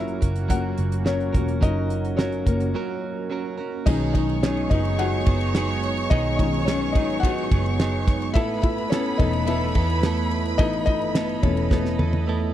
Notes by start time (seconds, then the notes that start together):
Already playing: F#1 F#3 A#3 C#4 E4 F#4 A#4 E5 F#5
0.08 closed hi-hat
0.21 F#1 C#4 F#4 A#4, kick, closed hi-hat
0.36 closed hi-hat
0.49 F#3 A#3 C#4 F#4 A#4 F#5, kick, closed hi-hat
0.78 F#1, closed hi-hat
0.92 closed hi-hat
1.05 F#3 C#4 F#4 A#4 C#5, snare
1.20 closed hi-hat
1.33 E1 F#3 A#3 C#4 F#4 A#4, kick, closed hi-hat
1.48 closed hi-hat
1.61 F#1 F#3 C#4 D#4 F#4 A#4 D#5, kick, closed hi-hat
1.90 closed hi-hat
2.05 closed hi-hat
2.17 F#3 C#4 F#4 A#4 C#5, snare
2.32 closed hi-hat
2.46 F#1 A#3 C#4 F#4 A#4, kick, closed hi-hat
2.60 closed hi-hat
2.74 F#3 C#4 F#4 A#4
3.30 F#3 C#4 F#4 A#4
3.58 C#4 F#4 A#4
3.86 B1 B2 D#3 F#3 G#3 B3 C#4 D#4 G#4 C#5 D#5 C#6, kick, crash
4.14 D#4 D#5, kick, ride
4.29 ride
4.43 F#3 B3 C#4 D#4 G#4 C#5, snare, ride
4.57 ride
4.70 F#1 F#3 B3 D#4 G#4 D#5, kick, ride
4.85 ride
4.98 F#3 B3 D#4 F#4 G#4 F#5, ride
5.26 F#1 F#3 B3 D#4 G#4, kick, ride
5.41 ride
5.55 F#3 B3 D#4 G#4, snare, ride
5.69 ride
5.83 ride
5.97 ride
6.10 B1 B2 D#3 F#3 B3 D#4 G#4 D#5, kick, ride
6.37 D#3 G#3 C#4 D#4 D#5, kick, ride
6.54 ride
6.65 F#3 B3 C#4 D#4 G#4 C#5, snare, ride
6.92 G#1 D#4 G#4 D#5, kick, ride
6.97 F#3 B3
7.10 ride
7.20 F#3 B3 F#4 F#5, kick
7.24 D#4 G#4, ride
7.38 ride
7.51 F#1 F#3 B3 D#4 G#4, kick, ride
7.66 ride
7.79 F#3 B3 D#4 G#4, snare, ride
8.08 kick, snare, ride
8.22 ride
8.34 A1 A3 B3 E4 A4 B4 E5 B5, kick, ride
8.62 E4 E5, kick, ride
8.78 ride
8.90 A3 B3 C#4 E4 A4 C#5, snare, ride
9.06 ride
9.18 E1 E3 A3 B3 D#4 E4 A4 D#5, kick, ride
9.33 ride
9.46 A3 B3 E4 A4 E5, ride
9.61 ride
9.75 E2 B3 E4 A4, kick, ride
9.90 ride
10.03 A3 B3 E4 A4, snare, ride
10.18 ride
10.31 ride
10.46 ride
10.58 A1 E3 A3 B3 D#4 E4 A4 D#5, kick, ride
10.73 ride
10.86 D#4 D#5, kick, ride
11.02 ride
11.15 A3 B3 E4 A4, snare, ride
11.29 ride
11.43 E1 E3 A3 B3 C#4 E4 A4 C#5, kick, ride
11.57 ride
11.70 A3 B3 E4 A4 B4, kick, snare
11.85 snare
11.99 E2 B3 E4 A4, high tom
12.13 high tom
12.27 A3 B3 E4 A4